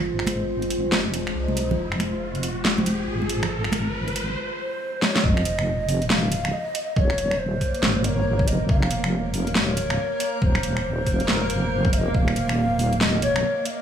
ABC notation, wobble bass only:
X:1
M:4/4
L:1/8
Q:"Swing 16ths" 1/4=139
K:Fm
V:1 name="Wobble bass" clef=bass
A,,,4 F,,,2 C,,2 | F,,,6 A,,,2- | A,,,4 z4 | F,,,6 z2 |
E,,,3 z A,,,3 F,,, | F,,,6 z2 | E,,,3 F,,,4- F,,, | E,,,6 z2 |]